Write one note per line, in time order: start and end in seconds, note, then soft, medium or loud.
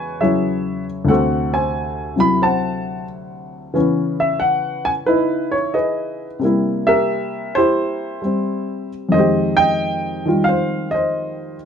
0.00 1.09 E2 soft
0.00 0.19 C#3 soft
0.00 1.10 G#3 soft
0.00 1.09 F#4 medium
0.00 0.84 B4 medium
0.00 0.20 C#5 medium
0.00 0.23 G#5 medium
0.20 1.08 C#3 soft
0.20 1.09 F#3 soft
0.20 1.10 E4 soft
0.20 1.05 G#4 soft
0.20 1.05 C#5 soft
0.20 0.83 E5 medium
1.05 3.73 D2 soft
1.05 2.14 C3 soft
1.05 3.74 A3 soft
1.05 1.51 F#5 medium
1.10 3.75 F#4 medium
1.10 2.38 A4 medium
1.10 1.52 C5 soft
1.54 2.41 C5 soft
1.54 2.22 G#5 medium
2.16 3.73 C3 soft
2.16 3.73 F#3 soft
2.16 3.74 E4 soft
2.20 2.42 B5 medium
2.42 3.71 C5 medium
2.42 3.71 F#5 medium
2.42 3.05 A5 medium
3.74 6.41 C#3 medium
3.74 6.42 E3 medium
3.74 6.41 B3 soft
3.74 6.42 C#4 soft
4.20 4.40 E5 medium
4.40 4.87 F#5 medium
4.85 4.90 G#5 medium
5.06 6.38 D#4 medium
5.06 6.38 E4 medium
5.06 5.54 B4 medium
5.51 5.74 C#5 medium
5.74 6.38 G#4 soft
5.74 6.38 B4 soft
5.74 6.27 D#5 medium
6.39 9.12 C3 soft
6.39 8.20 G3 soft
6.39 9.14 A#3 soft
6.45 7.56 E4 soft
6.87 7.56 G4 medium
6.87 8.20 A#4 medium
6.87 7.57 E5 medium
7.55 8.89 E4 medium
7.55 8.89 G4 medium
7.55 8.88 C5 medium
8.22 9.13 G3 soft
8.22 9.14 C4 soft
9.09 11.65 F2 soft
9.09 10.24 D#3 soft
9.09 9.55 D#5 medium
9.14 11.65 G#3 soft
9.14 9.57 C5 medium
9.19 11.65 G4 medium
9.57 10.44 D#5 medium
9.57 10.43 G5 loud
10.26 11.65 D#3 soft
10.26 11.65 G3 soft
10.26 11.65 F4 soft
10.44 10.89 F5 medium
10.49 10.91 C5 medium
10.91 11.57 C5 medium
10.91 11.55 D#5 medium